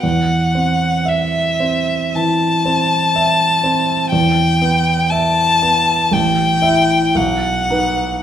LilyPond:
<<
  \new Staff \with { instrumentName = "Violin" } { \time 4/4 \key a \dorian \tempo 4 = 59 fis''4 e''4 a''2 | g''4 a''4 g''4 fis''4 | }
  \new Staff \with { instrumentName = "Grand piano" } { \time 4/4 \key a \dorian e,8 c'8 e''8 c'8 e8 c'8 e''8 c'8 | e,8 b8 e''8 b8 a,,8 <e' e''>8 b,,8 <dis' b'>8 | }
>>